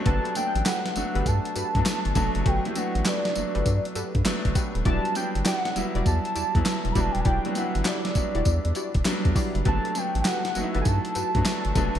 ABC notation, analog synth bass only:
X:1
M:4/4
L:1/16
Q:"Swing 16ths" 1/4=100
K:G
V:1 name="Analog synth bass" clef=bass
G,,, z2 A,,, z2 G,,, G,,, G,, z G,, G,, z G,,, =F,,, ^F,,, | G,,, z2 A,,, z2 G,,, G,,, G,, z G,, G,, G,,, G,,, z _E,,, | E,,, z2 G,,, z2 E,,, E,,, E,, z E,, E,, z E,,, E,,, _E,,, | E,,, z2 G,,, z2 E,,, E,,, E,, E,, z E,,, z E,, z F,,, |
G,,, z2 A,,, z2 G,,, G,,, G,, z G,, G,, z G,,, =F,,, ^F,,, |]